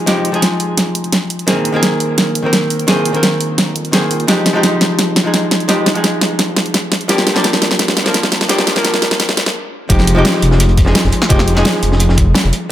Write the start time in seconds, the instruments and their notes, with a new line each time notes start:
0.06 detuned saw bass F1, hollow-body jazz guitar F3 G#3 D#4 G4, snare, closed hi-hat
0.25 closed hi-hat
0.32 detuned saw bass F1, hollow-body jazz guitar F3 G#3 D#4 G#4, closed hi-hat
0.42 snare, closed hi-hat
0.60 detuned saw bass F1, open hi-hat
0.77 snare, closed hi-hat
0.87 detuned saw bass F1
0.95 closed hi-hat
1.04 closed hi-hat
1.12 snare, closed hi-hat
1.22 detuned saw bass F1
1.30 open hi-hat
1.39 closed hi-hat
1.47 detuned saw bass A#1, hollow-body jazz guitar D#3 A#3 C4 G#4, snare, closed hi-hat
1.65 closed hi-hat
1.72 detuned saw bass A#1, hollow-body jazz guitar D#3 A#3 C4 G#4
1.83 snare, closed hi-hat
2.00 detuned saw bass A#1, open hi-hat
2.18 snare, closed hi-hat
2.27 detuned saw bass A#1
2.35 closed hi-hat
2.42 hollow-body jazz guitar D#3 A#3 C4 A#4
2.53 snare, closed hi-hat
2.62 detuned saw bass A#1
2.70 open hi-hat
2.79 closed hi-hat
2.87 detuned saw bass A#1, hollow-body jazz guitar D#3 A#3 C4 G#4, snare, closed hi-hat
3.05 closed hi-hat
3.13 detuned saw bass A#1, hollow-body jazz guitar D#3 A#3 C4 A#4, closed hi-hat
3.23 snare, closed hi-hat
3.41 detuned saw bass A#1, open hi-hat
3.58 snare, closed hi-hat
3.67 detuned saw bass F2
3.76 closed hi-hat
3.85 closed hi-hat
3.92 hollow-body jazz guitar D#3 A#3 C4 G#4, snare, closed hi-hat
4.02 detuned saw bass A#2
4.11 open hi-hat
4.20 closed hi-hat
4.27 detuned saw bass F1, hollow-body jazz guitar F3 G#3 D#4 G4, snare, closed hi-hat
4.46 snare, closed hi-hat
4.53 detuned saw bass F1, hollow-body jazz guitar F3 G#3 D#4 G4
4.63 snare, closed hi-hat
4.81 detuned saw bass F1, snare, open hi-hat
4.99 snare, closed hi-hat
5.08 detuned saw bass F1
5.16 snare, closed hi-hat
5.23 hollow-body jazz guitar F3 G#3 D#4 G#4
5.34 snare, closed hi-hat
5.43 detuned saw bass F1
5.51 snare, open hi-hat
5.60 closed hi-hat
5.68 detuned saw bass F1, hollow-body jazz guitar F3 G#3 D#4 G4, snare, closed hi-hat
5.86 snare, closed hi-hat
5.94 detuned saw bass F1, hollow-body jazz guitar F3 G#3 D#4 G#4, closed hi-hat
6.04 snare, closed hi-hat
6.21 detuned saw bass F1, snare, open hi-hat
6.39 snare, closed hi-hat
6.48 detuned saw bass F1
6.57 snare, closed hi-hat
6.66 closed hi-hat
6.74 snare, closed hi-hat
6.83 detuned saw bass F1
6.92 snare, open hi-hat
7.01 closed hi-hat
7.08 detuned saw bass G1, hollow-body jazz guitar F3 A#3 D4 G4, snare, closed hi-hat
7.18 snare
7.27 snare, closed hi-hat
7.34 detuned saw bass G1, hollow-body jazz guitar F3 A#3 D4 G4, snare
7.44 snare, closed hi-hat
7.53 snare
7.62 detuned saw bass G1, snare, open hi-hat
7.71 snare
7.79 snare, closed hi-hat
7.88 detuned saw bass G1, snare
7.97 snare, closed hi-hat
8.04 hollow-body jazz guitar F3 A#3 D4 A#4, snare
8.14 snare, closed hi-hat
8.23 detuned saw bass G1, snare
8.32 snare, open hi-hat
8.41 snare, closed hi-hat
8.48 detuned saw bass G1, hollow-body jazz guitar F3 A#3 D4 G4, snare, closed hi-hat
8.58 snare
8.67 snare, closed hi-hat
8.74 detuned saw bass G1, hollow-body jazz guitar F3 A#3 D4 A#4, snare, closed hi-hat
8.85 snare, closed hi-hat
8.94 snare
9.02 detuned saw bass G1, snare, open hi-hat
9.11 snare, closed hi-hat
9.20 snare, closed hi-hat
9.29 detuned saw bass G1, snare
9.37 snare, closed hi-hat
9.46 snare, closed hi-hat
9.89 detuned saw bass F1, hollow-body jazz guitar F3 G#3 D#4 G4, kick, closed hi-hat
9.99 snare
10.07 closed hi-hat
10.15 detuned saw bass F1, hollow-body jazz guitar F3 G#3 D#4 G4
10.25 snare, closed hi-hat
10.34 snare
10.42 detuned saw bass F1, closed hi-hat, open hi-hat
10.51 snare
10.60 closed hi-hat
10.69 detuned saw bass F1, closed hi-hat
10.77 kick, closed hi-hat
10.85 hollow-body jazz guitar F3 G#3 D#4 G#4, snare
10.95 snare, closed hi-hat
11.04 detuned saw bass F1, kick, snare
11.12 closed hi-hat, open hi-hat
11.22 snare
11.29 detuned saw bass F1, hollow-body jazz guitar F3 G#3 D#4 G4, kick, closed hi-hat
11.39 snare
11.48 closed hi-hat
11.55 detuned saw bass F1, hollow-body jazz guitar F3 G#3 D#4 G#4, snare
11.65 snare, closed hi-hat
11.74 snare
11.83 detuned saw bass F1, closed hi-hat, open hi-hat
11.92 snare
12.00 closed hi-hat
12.09 detuned saw bass F1, snare
12.17 kick, closed hi-hat
12.34 snare, closed hi-hat
12.44 detuned saw bass F1
12.53 closed hi-hat, open hi-hat